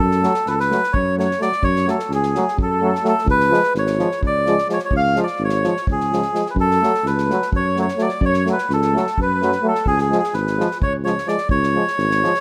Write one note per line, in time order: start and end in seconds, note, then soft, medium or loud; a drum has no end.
0.00 0.25 F#2 loud
0.00 0.43 A4 medium
0.00 0.47 A4 loud
0.11 snare soft
0.22 0.32 F#3 medium
0.22 0.31 A3 soft
0.22 snare soft
0.34 snare soft
0.46 0.73 C#2 medium
0.46 0.59 A4 medium
0.46 0.54 B4 medium
0.46 snare soft
0.54 0.61 A4 medium
0.60 0.94 B4 loud
0.60 0.92 B4 medium
0.60 snare soft
0.70 0.80 F#3 medium
0.70 0.79 A3 medium
0.70 snare soft
0.83 snare soft
0.93 1.32 F#2 medium
0.93 1.16 C#5 medium
0.93 1.17 C#5 medium
0.93 kick medium
1.17 1.26 F#3 medium
1.17 1.26 A3 medium
1.17 1.41 C#5 medium
1.17 1.40 C#5 medium
1.17 snare soft
1.31 snare soft
1.39 1.50 F#3 soft
1.39 1.48 A3 medium
1.39 1.64 D5 loud
1.39 1.62 D5 medium
1.39 snare soft
1.52 snare soft
1.62 1.88 F#2 medium
1.62 1.86 C#5 medium
1.62 1.89 C#5 loud
1.62 kick medium
1.76 snare soft
1.87 1.96 F#3 medium
1.87 1.96 A3 medium
1.87 2.09 A4 medium
1.87 2.12 A4 medium
1.87 snare soft
1.99 snare soft
2.09 2.36 C#2 medium
2.09 2.56 G#4 medium
2.09 snare soft
2.15 2.57 G#4 medium
2.23 snare soft
2.35 2.45 F#3 medium
2.35 2.45 A3 soft
2.35 snare soft
2.48 snare soft
2.57 2.95 F#2 medium
2.57 kick medium
2.62 3.03 A4 medium
2.62 3.07 A4 medium
2.81 2.91 F#3 medium
2.81 2.90 A3 medium
2.95 snare soft
3.03 3.12 F#3 medium
3.03 3.13 A3 medium
3.03 snare soft
3.08 3.27 A4 medium
3.08 3.28 A4 medium
3.18 snare soft
3.25 3.52 C#2 loud
3.25 kick medium
3.30 3.73 B4 loud
3.30 3.75 B4 medium
3.40 snare soft
3.50 3.59 F3 medium
3.50 3.60 G#3 medium
3.50 snare soft
3.63 snare soft
3.75 4.01 G#1 medium
3.75 snare soft
3.79 4.21 C#5 medium
3.79 4.22 C#5 medium
3.87 snare soft
3.99 4.08 F3 medium
3.99 4.08 G#3 medium
3.99 snare soft
4.11 snare soft
4.22 4.60 C#2 medium
4.22 kick medium
4.27 4.68 D5 loud
4.27 4.69 D5 medium
4.46 4.55 F3 medium
4.46 4.56 G#3 medium
4.46 snare soft
4.58 snare soft
4.68 4.77 F3 soft
4.68 4.78 G#3 medium
4.68 snare soft
4.73 4.80 C#5 medium
4.79 snare soft
4.85 4.93 C#5 medium
4.85 4.94 C#5 medium
4.91 5.18 C#2 medium
4.91 kick medium
4.96 5.20 F5 loud
4.96 5.18 F5 medium
5.15 5.25 F3 medium
5.15 5.24 G#3 medium
5.15 snare soft
5.24 5.43 D5 medium
5.24 5.42 D5 medium
5.24 snare soft
5.36 5.66 G#1 medium
5.36 snare soft
5.44 5.86 C#5 medium
5.44 5.87 C#5 medium
5.49 snare soft
5.64 5.73 F3 medium
5.64 5.73 G#3 soft
5.64 snare soft
5.77 snare soft
5.87 6.25 C#2 medium
5.87 kick medium
5.92 6.48 G#4 medium
6.00 snare soft
6.12 6.21 F3 medium
6.12 6.21 G#3 soft
6.12 snare soft
6.22 snare soft
6.34 6.43 F3 soft
6.34 6.43 G#3 medium
6.34 snare soft
6.46 snare soft
6.50 6.56 B4 medium
6.50 6.57 B4 medium
6.55 6.82 F#2 medium
6.55 kick medium
6.60 7.07 A4 loud
6.60 7.05 A4 medium
6.71 snare soft
6.81 6.92 F#3 medium
6.81 6.90 A3 medium
6.81 snare soft
6.94 snare soft
7.04 7.30 C#2 medium
7.04 7.50 B4 medium
7.04 snare soft
7.10 7.47 B4 medium
7.18 snare soft
7.29 7.39 F#3 medium
7.29 7.38 A3 soft
7.29 snare soft
7.42 snare soft
7.52 7.90 F#2 medium
7.52 7.79 C#5 loud
7.52 kick medium
7.59 7.78 C#5 medium
7.76 7.86 F#3 medium
7.76 7.85 A3 medium
7.76 snare soft
7.82 8.02 C#5 medium
7.82 8.01 C#5 medium
7.88 snare soft
7.97 8.08 F#3 medium
7.97 8.06 A3 medium
7.97 snare soft
8.01 8.21 D5 medium
8.06 8.23 D5 medium
8.06 snare soft
8.21 8.47 F#2 loud
8.21 kick medium
8.25 8.49 C#5 medium
8.25 8.48 C#5 medium
8.34 snare soft
8.46 8.56 F#3 medium
8.46 8.55 A3 medium
8.46 snare soft
8.52 8.72 B4 medium
8.52 8.71 B4 medium
8.58 snare soft
8.69 8.95 C#2 loud
8.69 9.20 A4 medium
8.69 snare soft
8.75 9.17 A4 medium
8.82 snare soft
8.93 9.04 F#3 medium
8.93 9.02 A3 medium
8.93 snare soft
9.07 snare soft
9.18 9.55 F#2 medium
9.18 9.62 B4 medium
9.18 kick medium
9.22 9.67 B4 medium
9.41 9.51 F#3 medium
9.41 9.50 A3 medium
9.41 snare soft
9.52 snare soft
9.62 9.72 F#3 medium
9.62 9.71 A3 medium
9.68 9.86 A4 medium
9.75 snare soft
9.86 10.12 C#2 loud
9.86 9.99 G#4 loud
9.86 10.02 G#4 medium
9.86 kick medium
9.98 10.17 G#4 medium
9.98 snare soft
10.03 10.17 G#4 medium
10.10 10.20 F3 medium
10.10 10.19 G#3 medium
10.10 snare soft
10.19 10.34 G#4 medium
10.24 snare soft
10.33 10.60 G#1 medium
10.33 10.78 B4 medium
10.33 10.80 B4 medium
10.33 snare soft
10.47 snare soft
10.58 10.67 F3 medium
10.58 10.68 G#3 medium
10.58 snare soft
10.71 snare soft
10.81 11.19 C#2 medium
10.81 10.93 C#5 medium
10.81 kick medium
10.86 10.96 C#5 medium
11.04 11.13 F3 medium
11.04 11.14 G#3 medium
11.04 11.28 C#5 medium
11.04 11.27 C#5 medium
11.04 snare soft
11.18 snare soft
11.26 11.35 F3 medium
11.26 11.36 G#3 medium
11.26 11.48 D5 medium
11.26 11.49 D5 medium
11.26 snare soft
11.38 snare soft
11.49 11.76 C#2 loud
11.49 12.40 C#5 loud
11.49 12.40 C#5 medium
11.49 kick medium
11.63 snare soft
11.74 11.84 F3 medium
11.74 11.85 G#3 medium
11.87 snare soft
11.97 12.24 G#1 loud
11.97 snare soft
12.11 snare soft
12.22 12.32 F3 medium
12.22 12.32 G#3 medium
12.22 snare soft
12.34 snare soft